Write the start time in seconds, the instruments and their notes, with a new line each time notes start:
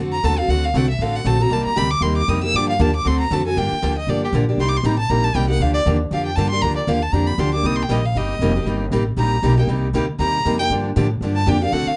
Already playing: upright bass F2
0.00 steel-string acoustic guitar D3 A3 C4 F#4 A4
0.12 violin A#5
0.23 upright bass D#2, steel-string acoustic guitar D3 A3 C4 F#4 A4, violin A5
0.39 steel-string acoustic guitar C4 F#4 A4, violin F5
0.48 upright bass D2, steel-string acoustic guitar D3 A3 C4 F#4 A4, violin F#5
0.65 violin F5
0.74 upright bass C2, steel-string acoustic guitar D3 A3 C4 F#4 A4, violin F#5
0.90 violin E5
0.99 upright bass A1, steel-string acoustic guitar D3 A3 C4 F#4 A4, violin F5
1.16 violin F#5
1.25 upright bass A#1, steel-string acoustic guitar D3 A3 C4 F#4 A4, violin A5
1.40 steel-string acoustic guitar C4 F#4 A4, violin A#5
1.50 upright bass C2, steel-string acoustic guitar C3 G3 A#3 D#4 G4, violin A5
1.65 violin A#5, muted upright bass stroke
1.76 upright bass D2, steel-string acoustic guitar C3 G3 A#3 D#4 G4, violin B5
1.91 violin D6
2.01 upright bass D#2, steel-string acoustic guitar C3 G3 A#3 D#4 G4, violin C6
2.17 violin D6
2.28 upright bass F2, steel-string acoustic guitar C3 G3 A#3 D#4 G4, violin D#6
2.43 steel-string acoustic guitar A#3 D#4 G4, violin E6
2.54 upright bass G2, steel-string acoustic guitar D3 F3 A#3 D4 G4, violin D6
2.69 violin F5
2.79 upright bass D#2, steel-string acoustic guitar D3 F3 A#3 D4 G4, violin A5
2.96 violin D6
3.05 upright bass D2, steel-string acoustic guitar D3 A3 C4 F#4 A4, violin C6
3.21 violin A#5
3.31 upright bass F2, steel-string acoustic guitar D3 A3 C4 F#4 A4, violin A5
3.46 steel-string acoustic guitar C4 F#4 A4, violin G#5
3.56 upright bass G2, steel-string acoustic guitar D3 F3 A#3 D4 G4, violin G5
3.72 muted upright bass stroke
3.83 upright bass D2, steel-string acoustic guitar D3 F3 A#3 D4 G4
3.98 violin D#5
4.07 upright bass G1, steel-string acoustic guitar D3 F3 A#3 D4 G4, violin D5
4.24 violin G4
4.33 upright bass A#1, steel-string acoustic guitar D3 F3 A#3 D4 G4
4.49 steel-string acoustic guitar A#3 D4 G4
4.58 upright bass C2, steel-string acoustic guitar C3 G3 A#3 D#4 G4, violin C6
4.69 violin D6
4.77 violin C6
4.83 upright bass A1, steel-string acoustic guitar C3 G3 A#3 D#4 G4, violin A#5
4.99 violin A5
5.09 upright bass A#1, steel-string acoustic guitar C3 G3 A#3 D#4 G4, violin A#5
5.24 violin A5
5.35 upright bass C2, steel-string acoustic guitar C3 G3 A#3 D#4 G4, violin G5
5.48 steel-string acoustic guitar A#3 D#4 G4, violin F#5
5.59 upright bass D2, steel-string acoustic guitar D3 F3 A#3 D4 G4, violin F5
5.74 violin D5
5.86 upright bass D#2, steel-string acoustic guitar D3 F3 A#3 D4 G4
6.11 upright bass F2, steel-string acoustic guitar D3 F3 A#3 D4 G4, violin F5
6.26 violin G5
6.36 upright bass G2, steel-string acoustic guitar D3 F3 A#3 D4 G4, violin A5
6.50 steel-string acoustic guitar D4 G4, violin C6
6.54 steel-string acoustic guitar A#3
6.62 upright bass D2, steel-string acoustic guitar D3 F3 A#3 D4 G4, violin A#5
6.77 violin D5
6.87 upright bass D#2, steel-string acoustic guitar D3 F3 A#3 D4 G4, violin F5
7.03 violin A5
7.12 upright bass F2, steel-string acoustic guitar D3 F3 A#3 D4 G4, violin A#5
7.27 violin B5
7.38 upright bass D2, steel-string acoustic guitar D3 F3 A#3 D4 G4, violin C6
7.53 steel-string acoustic guitar A#3 D4 G4, violin D6
7.64 upright bass C2, steel-string acoustic guitar C3 G3 A#3 D#4 G4, violin D#6
7.76 violin C6
7.83 violin G5
7.89 upright bass A#1, steel-string acoustic guitar C3 G3 A#3 D#4 G4, violin D#5
8.05 violin F5
8.15 upright bass G1, steel-string acoustic guitar C3 G3 A#3 D#4 G4, violin D#5
8.39 upright bass F1, steel-string acoustic guitar C3 G3 A#3 D#4 G4
8.56 steel-string acoustic guitar A#3 D#4 G4
8.65 upright bass G1, steel-string acoustic guitar C3 G3 A#3 D#4 G4
8.91 upright bass A1, steel-string acoustic guitar C3 G3 A#3 D#4 G4
9.17 upright bass A#1, steel-string acoustic guitar C3 G3 A#3 D#4 G4, violin A#5
9.42 upright bass B1, steel-string acoustic guitar C3 G3 A#3 D#4 G4
9.58 steel-string acoustic guitar A#3 D#4 G4, violin G5
9.67 upright bass C2, steel-string acoustic guitar C3 G3 A#3 D#4 G4
9.94 upright bass D2, steel-string acoustic guitar C3 G3 A#3 D#4 G4
10.19 upright bass D#2, steel-string acoustic guitar C3 G3 A#3 D#4 G4, violin A#5
10.45 upright bass F2, steel-string acoustic guitar C3 G3 A#3 D#4 G4
10.59 steel-string acoustic guitar A#3 D#4 G4, violin G5
10.70 upright bass G2, steel-string acoustic guitar D3 F3 A#3 D4 G4
10.96 upright bass A2, steel-string acoustic guitar D3 F3 A#3 D4 G4
11.21 upright bass G2, steel-string acoustic guitar D3 F3 A#3 D4 G4
11.36 violin A5
11.46 upright bass F2, steel-string acoustic guitar D3 F3 A#3 D4 G4, violin G5
11.62 steel-string acoustic guitar A#3 D4 G4, violin F5
11.72 upright bass D2, steel-string acoustic guitar D3 A3 C4 F#4 A4, violin F#5
11.86 violin F5, muted upright bass stroke